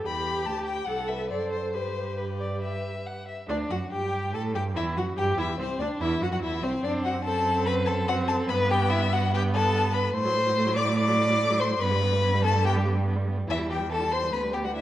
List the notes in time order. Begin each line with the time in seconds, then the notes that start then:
0.05 E2 G4 B5
0.46 D2 A5
0.65 G5
0.86 C2 A4 F#5
1.08 B4 E5
1.29 F#2 A4 C5 D5
1.52 C5
1.73 G2 G4 B4 C5
2.17 B4
2.40 D5
2.62 E5
3.06 F#5
3.28 E5
3.48 D2 D4 D5
3.70 F#2 F#4 F#5
3.91 G2 G4 G5
4.33 A2 A4 A5
4.54 G2 G4 G5
4.75 E2 E4 E5
4.97 F#2 F#4 F#5
5.17 G2 G4 G5
5.37 E2 E4 E5
5.59 C2 C4 C5
5.80 D2 D4 D5
6.00 E2 E4 E5
6.21 F#2 F#4 F#5
6.31 F#2 F#4 F#5
6.42 E2 E4 E5
6.62 C2 C4 C5
6.82 F#2 C4 D4 D5
7.03 F#4 F#5
7.24 C4 A4 A5
7.66 B4 B5
7.86 A4 A5
8.08 C4 F#4 F#5
8.28 A4 A5
8.49 G2 B3 B4 B5
8.70 G4 G5
8.90 E4 E5
9.13 F#4 F#5
9.33 B3 G4 G5
9.54 A4 A5
9.93 B4 B5
10.14 A2 A3 C5 C6
10.25 F#3
10.35 A3
10.45 F#3
10.56 A3
10.66 F#3
10.75 A3 D5 D6
10.87 F#3
10.96 A3 D5 D6
11.08 F#3
11.18 A3
11.29 F#3
11.40 A3
11.50 F#3
11.59 A3 C5 C6
11.70 F#3
11.79 G2 B3 B4 B5
11.91 G3
12.02 B3
12.13 G3
12.23 B3
12.33 G3
12.43 B3 A4 A5
12.55 G3
12.64 B3 G4 G5
12.76 G3
12.85 B3
12.96 G3
13.06 B3
13.16 G3
13.28 B3
13.37 G3
13.48 E2 E3 E4 E5
13.58 G3
13.69 E3 G4 G5
13.80 G3
13.90 E3 A4 A5
14.00 G3
14.11 E3 C5 C6
14.22 G3
14.31 D2 B3 B4 B5
14.43 G3
14.53 B3 G4 G5
14.63 G3 F#4 F#5
14.74 D4 E4 E5